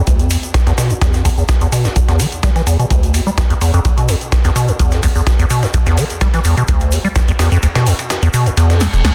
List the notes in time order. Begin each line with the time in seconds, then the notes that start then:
0.07 D2, kick, closed hi-hat, ride, shaker
0.19 F2, closed hi-hat, shaker
0.30 E2, open hi-hat, ride, shaker
0.43 closed hi-hat, shaker
0.54 kick, snare, closed hi-hat, ride, shaker
0.67 E2, snare, closed hi-hat, shaker
0.78 B2, snare, open hi-hat, ride, shaker
0.90 E2, closed hi-hat, shaker
1.01 E2, kick, snare, closed hi-hat, ride, shaker
1.13 F2, snare, closed hi-hat, shaker
1.25 E2, kick, open hi-hat, ride, shaker
1.38 E2, shaker
1.49 kick, snare, closed hi-hat, ride, shaker
1.61 E2, closed hi-hat, shaker
1.72 B2, open hi-hat, ride, shaker
1.84 E2, snare, closed hi-hat, shaker
1.96 E2, kick, closed hi-hat, ride, shaker
2.08 E2, snare, closed hi-hat, shaker
2.20 E3, open hi-hat, ride, shaker
2.32 closed hi-hat, shaker
2.43 G3, kick, snare, closed hi-hat, ride, shaker
2.56 E3, snare, closed hi-hat, shaker
2.67 E2, open hi-hat, ride, shaker
2.79 B2, closed hi-hat, shaker
2.90 D2, kick, closed hi-hat, ride, shaker
3.03 closed hi-hat, shaker
3.14 E2, open hi-hat, ride, shaker
3.27 G3, shaker
3.38 D2, kick, snare, closed hi-hat, ride, shaker
3.50 E2, closed hi-hat, shaker
3.61 E2, open hi-hat, ride, shaker
3.74 F2, closed hi-hat, shaker
3.85 D2, kick, closed hi-hat, ride, shaker
3.97 B2, closed hi-hat, shaker
4.08 E2, open hi-hat, ride, shaker
4.21 closed hi-hat, shaker
4.32 kick, snare, closed hi-hat, ride, shaker
4.44 E2, snare, closed hi-hat, shaker
4.56 B2, open hi-hat, ride, shaker
4.68 E2, closed hi-hat, shaker
4.79 E2, kick, closed hi-hat, ride, shaker
4.91 F2, snare, closed hi-hat, shaker
5.03 E2, kick, open hi-hat, ride, shaker
5.16 E2, shaker
5.27 kick, snare, closed hi-hat, ride, shaker
5.39 E2, closed hi-hat, shaker
5.50 B2, open hi-hat, ride, shaker
5.63 E2, snare, closed hi-hat, shaker
5.74 E2, kick, closed hi-hat, ride, shaker
5.86 E2, snare, closed hi-hat, shaker
5.97 E3, open hi-hat, ride, shaker
6.10 closed hi-hat, shaker
6.21 G3, kick, snare, closed hi-hat, ride, shaker
6.34 E3, snare, closed hi-hat, shaker
6.45 E2, open hi-hat, ride, shaker
6.57 B2, closed hi-hat, shaker
6.68 D2, kick, closed hi-hat, ride, shaker
6.80 closed hi-hat, shaker
6.92 E2, open hi-hat, shaker
7.04 G3, shaker
7.16 D2, kick, snare, closed hi-hat, ride, shaker
7.28 E2, closed hi-hat, shaker
7.39 E2, snare, open hi-hat, ride, shaker
7.52 F2, closed hi-hat, shaker
7.63 D2, closed hi-hat, ride, shaker
7.75 B2, snare, closed hi-hat, ride, shaker
7.86 E2, open hi-hat, shaker
7.99 closed hi-hat, ride, shaker
8.10 snare, closed hi-hat, ride, shaker
8.23 E2, closed hi-hat, shaker
8.34 B2, open hi-hat, ride, shaker
8.46 E2, closed hi-hat, shaker
8.57 E2, closed hi-hat, ride, reverse cymbal, shaker
8.70 F2, snare, closed hi-hat, shaker
8.81 E2, snare, open hi-hat, ride, shaker
8.93 E1, closed hi-hat, shaker
9.04 D2, snare, closed hi-hat, ride, shaker